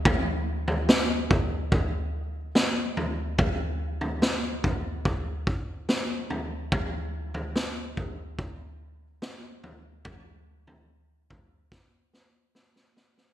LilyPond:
\new DrumStaff \with { instrumentName = "Drums" } \drummode { \time 4/4 \tempo 4 = 72 <bd tomfh>8. tomfh16 sn8 <bd tomfh>8 <bd tomfh>4 sn8 tomfh8 | <bd tomfh>8. tomfh16 sn8 <bd tomfh>8 <bd tomfh>8 bd8 sn8 tomfh8 | <bd tomfh>8. tomfh16 sn8 <bd tomfh>8 <bd tomfh>4 sn8 tomfh8 | <bd tomfh>8. tomfh16 r8 <bd tomfh>8 <bd sn>8 sn8 sn16 sn16 sn16 sn16 | }